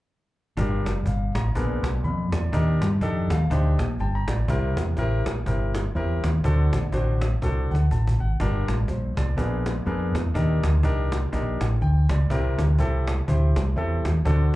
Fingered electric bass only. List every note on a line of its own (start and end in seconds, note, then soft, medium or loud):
0.57 0.86 G1 medium
0.86 1.03 F1 medium
1.06 1.30 G1 medium
1.35 1.52 A1 medium
1.55 1.79 A#1 medium
1.83 2.05 B1 medium
2.04 2.28 F2 medium
2.32 2.49 E2 medium
2.53 2.77 D#2 loud
2.81 2.99 G2 medium
3.01 3.26 F2 medium
3.30 3.47 D#2 medium
3.51 3.75 D2 medium
3.79 3.96 A#1 loud
3.99 4.24 G1 loud
4.28 4.45 A1 medium
4.48 4.73 C2 loud
4.76 4.94 E2 medium
4.97 5.21 A1 medium
5.25 5.43 A#1 medium
5.46 5.88 G1 medium
5.95 6.19 E2 medium
6.24 6.41 D#2 medium
6.44 6.68 D2 medium
6.73 6.90 A#1 medium
6.92 7.34 A1 medium
7.42 7.66 C2 medium
7.71 7.88 D2 medium
7.92 8.15 A1 medium
8.20 8.37 G#1 medium
8.40 8.64 G1 loud
8.69 8.86 A1 medium
8.88 9.13 A#1 medium
9.17 9.35 C2 medium
9.38 9.79 A#1 medium
9.87 10.11 F2 medium
10.15 10.32 E2 medium
10.35 10.59 D#2 loud
10.63 10.81 D2 medium
10.83 11.25 C2 medium
11.33 11.57 A#1 medium
11.61 11.79 A1 medium
11.82 12.06 D2 medium
12.10 12.28 C#2 medium
12.30 12.54 C2 medium
12.58 12.76 D2 medium
12.78 13.20 C2 medium
13.28 13.52 D2 medium
13.56 13.74 C2 medium
13.77 14.01 E2 loud
14.05 14.22 D#2 medium
14.26 14.50 D2 loud